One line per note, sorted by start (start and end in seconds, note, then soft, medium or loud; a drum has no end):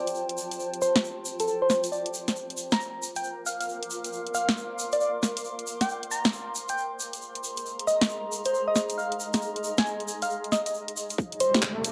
0.00 3.72 F4 medium
0.00 4.03 C5 medium
0.00 3.68 G5 medium
0.00 3.44 A5 medium
0.07 closed hi-hat medium
0.07 shaker soft
0.15 shaker soft
0.29 closed hi-hat soft
0.38 shaker medium
0.51 closed hi-hat medium
0.51 shaker soft
0.60 shaker soft
0.74 closed hi-hat soft
0.82 0.95 C5 medium
0.82 shaker medium
0.96 snare medium
0.96 closed hi-hat medium
0.96 shaker soft
1.04 shaker soft
1.25 shaker medium
1.40 1.45 A4 medium
1.40 closed hi-hat medium
1.40 shaker soft
1.47 1.57 A4 medium
1.47 shaker soft
1.62 1.67 C5 medium
1.70 1.79 C5 medium
1.70 snare soft
1.70 shaker medium
1.84 closed hi-hat medium
1.84 shaker medium
1.92 2.05 D5 medium
1.92 shaker soft
2.06 closed hi-hat soft
2.14 shaker medium
2.28 snare soft
2.28 closed hi-hat medium
2.28 shaker soft
2.36 8.38 A#4 medium
2.36 shaker soft
2.50 closed hi-hat soft
2.56 8.30 D6 medium
2.56 shaker medium
2.69 7.95 F5 medium
2.69 2.80 A#5 medium
2.69 snare medium
2.69 closed hi-hat medium
2.69 shaker soft
2.80 shaker soft
3.03 shaker medium
3.16 3.24 G5 medium
3.16 closed hi-hat medium
3.16 shaker medium
3.24 11.92 C6 medium
3.24 shaker soft
3.46 3.55 F5 medium
3.46 shaker medium
3.60 3.66 F5 medium
3.60 closed hi-hat medium
3.60 shaker medium
3.69 shaker soft
3.83 closed hi-hat soft
3.90 shaker medium
4.04 closed hi-hat medium
4.04 shaker soft
4.13 shaker soft
4.27 closed hi-hat soft
4.34 4.48 F5 medium
4.34 shaker medium
4.49 snare medium
4.49 closed hi-hat medium
4.49 shaker soft
4.57 shaker soft
4.79 shaker medium
4.92 4.98 D5 medium
4.92 closed hi-hat medium
4.92 shaker soft
5.01 5.10 D5 medium
5.01 shaker soft
5.23 snare soft
5.23 shaker medium
5.37 closed hi-hat medium
5.37 shaker soft
5.44 shaker soft
5.59 closed hi-hat soft
5.67 shaker medium
5.81 5.89 G5 medium
5.81 snare soft
5.81 closed hi-hat medium
5.81 shaker soft
5.89 shaker soft
6.03 closed hi-hat soft
6.11 6.25 A#5 medium
6.11 shaker medium
6.25 snare medium
6.25 closed hi-hat medium
6.25 shaker soft
6.33 shaker soft
6.55 shaker medium
6.69 6.83 G5 medium
6.69 closed hi-hat medium
6.69 shaker soft
6.77 11.18 G#4 medium
6.77 shaker soft
6.94 11.19 A#5 medium
7.00 shaker medium
7.13 11.18 D#5 medium
7.13 closed hi-hat medium
7.13 shaker soft
7.21 shaker soft
7.35 closed hi-hat soft
7.44 shaker medium
7.57 closed hi-hat medium
7.57 shaker soft
7.66 shaker soft
7.79 closed hi-hat soft
7.87 8.01 D#5 medium
7.87 shaker medium
8.01 snare medium
8.01 closed hi-hat medium
8.01 shaker soft
8.09 shaker soft
8.32 shaker medium
8.45 8.51 C5 medium
8.45 closed hi-hat medium
8.45 shaker soft
8.53 8.63 C5 medium
8.53 shaker soft
8.68 8.73 D#5 medium
8.76 snare soft
8.76 shaker medium
8.89 closed hi-hat medium
8.89 shaker soft
8.98 9.11 F5 medium
8.98 shaker soft
9.12 closed hi-hat medium
9.20 shaker medium
9.33 snare soft
9.33 closed hi-hat medium
9.33 shaker soft
9.42 shaker soft
9.56 closed hi-hat soft
9.64 shaker medium
9.78 9.86 G#5 medium
9.78 snare medium
9.78 closed hi-hat medium
9.78 shaker soft
9.86 shaker soft
10.00 closed hi-hat soft
10.08 shaker medium
10.22 10.30 F5 medium
10.22 closed hi-hat medium
10.22 shaker soft
10.30 shaker soft
10.44 closed hi-hat soft
10.52 10.61 D#5 medium
10.52 snare soft
10.52 shaker medium
10.66 10.71 D#5 medium
10.66 closed hi-hat medium
10.66 shaker soft
10.74 shaker soft
10.88 closed hi-hat medium
10.97 shaker medium
11.10 closed hi-hat medium
11.10 shaker soft
11.18 11.92 F4 medium
11.18 kick loud
11.18 riser medium
11.18 shaker soft
11.32 closed hi-hat soft
11.40 11.54 C5 medium
11.40 closed hi-hat loud
11.40 shaker medium
11.54 11.60 A3 medium
11.54 11.60 E4 medium
11.54 11.60 G4 medium
11.54 snare medium
11.54 closed hi-hat medium
11.54 shaker soft
11.62 kick loud
11.62 clap loud
11.62 shaker soft
11.67 11.92 C5 medium
11.84 11.92 G5 medium
11.84 closed hi-hat loud
11.84 shaker medium